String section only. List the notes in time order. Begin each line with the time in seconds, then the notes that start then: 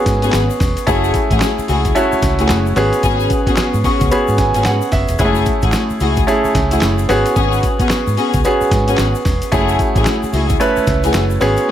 0.23 B3 C#4 F#4 G#4
0.87 A3 E4 F#4 G#4
1.31 A3 E4 F#4 G#4
1.68 A3 E4 F#4 G#4
2.39 A3 E4 F#4 G#4
3.03 B3 C#4 F#4 G#4
3.47 B3 C#4 F#4 G#4
3.84 B3 C#4 F#4 G#4
4.55 B3 C#4 F#4 G#4
5.20 A3 E4 F#4 G#4
5.63 A3 E4 F#4 G#4
6.01 A3 E4 F#4 G#4
6.71 A3 E4 F#4 G#4
7.36 B3 C#4 F#4 G#4
7.80 B3 C#4 F#4 G#4
8.17 B3 C#4 F#4 G#4
8.88 B3 C#4 F#4 G#4
9.52 A3 E4 F#4 G#4
9.96 A3 E4 F#4 G#4
10.33 A3 E4 F#4 G#4
11.04 A3 E4 F#4 G#4